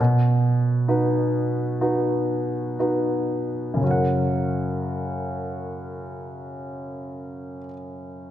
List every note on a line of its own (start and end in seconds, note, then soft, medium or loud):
0.00 3.78 B2 soft
0.88 1.78 D#4 soft
0.88 1.79 F#4 soft
0.88 1.79 B4 soft
1.81 2.76 D#4 soft
1.81 2.76 F#4 soft
1.81 2.76 B4 soft
2.79 3.79 D#4 soft
2.79 3.79 F#4 soft
2.79 3.79 B4 soft
3.74 7.57 F#2 soft
3.74 7.60 C#3 soft
3.80 7.63 C#4 soft
3.80 7.67 F#4 soft
3.87 7.70 A#4 soft
3.87 7.74 F#5 soft